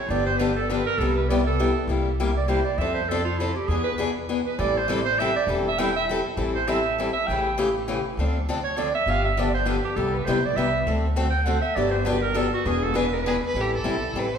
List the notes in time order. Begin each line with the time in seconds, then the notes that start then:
Already playing: C#5
0.09 G1 D3 F3 B3 D4 G4 D5
0.26 C5
0.38 D3 F3 B3 D4 G4 B4
0.56 A4
0.69 D3 F3 B3 D4 G4 B4
0.86 A#4
0.98 C2 C3 G3 B3 E4 G4 A4
1.16 B4
1.29 C3 G3 B3 E4 G4 D5
1.46 A4
1.60 C3 G3 B3 E4 G4
1.87 C2 C3 G3 A#3 E4 G4
2.20 C3 G3 A#3 E4 G4
2.37 D5
2.48 C3 G3 A#3 E4 G4 C5
2.64 D5
2.78 F2 F3 C4 D4 A4 E5
2.94 C5
3.08 F3 C4 D4 A4
3.25 F4
3.37 F3 C4 D4 E4 A4
3.55 G4
3.67 E2 E3 B3 D4 G#4
3.84 B4
3.98 E3 B3 D4 G#4
4.29 E3 B3 D4 G#4
4.46 B4
4.59 A1 E3 G3 C4 E4 A4 D5
4.77 C5
4.88 E3 G3 C4 E4 A4
5.05 C5
5.19 E3 G3 C4 E4 A4 E5
5.36 D5
5.47 E1 E3 G3 C4 E4 A4
5.68 E5
5.78 E3 G3 C4 E4 A4 G5
5.96 E5
6.09 E3 G3 C4 E4 A4
6.37 A1 E3 G3 C4 E4 A4
6.55 C5
6.68 E3 G3 C4 E4 A4 E5
6.98 E3 G3 C4 E4 A4
7.13 E5
7.27 A1 C#3 E3 G5
7.31 A3 C#4 G4
7.58 C#3 E3 A3 C#4 G4
7.88 C#3 E3 A3 C#4 G4
8.17 D2 D3 F3 C4 D4 A4
8.49 D3 F3 C4 D4 A4
8.64 C#5
8.77 D3 F3 C4 D4 A4 D5
8.95 E5
9.06 G1 D3 F3 B3 D4 G4 F5
9.25 E5
9.37 D3 F3 B3 D4 G4 D5
9.55 C5
9.66 D3 F3 B3 D4 G4 B4
9.85 G4
9.96 C2 C3 G3 B3 E4 G4 A4
10.14 B4
10.25 B1 C3 G3 B3 E4 C5
10.29 G4
10.45 D5
10.56 C2 C3 G3 B3 E4 G4 E5
10.87 D2 D3 A3 C4 F#4 A4
11.16 D3 A3 C4 F#4 A4
11.30 G5
11.45 D3 A3 C4 F#4 A4 F#5
11.61 E5
11.76 G1 D3 F#3 B3 D4 G4 D5
11.91 C5
12.05 D3 F#3 B3 D4 G4 B4
12.21 A#4
12.34 D3 F#3 B3 D4 G4 A4
12.54 F#4
12.65 E1 E3 B3 D4 G#4
12.84 A4
12.94 E3 B3 D4 G#4 B4
13.12 B4
13.26 E3 B3 D4 G#4
13.46 B4
13.54 A1 E3 G3 C4 E4 A4
13.61 G4
13.76 A4
13.84 B1 E3 G3 C4 E4 A4
14.14 A1 E3 G3 C4 E4 A4
14.19 B4
14.35 C5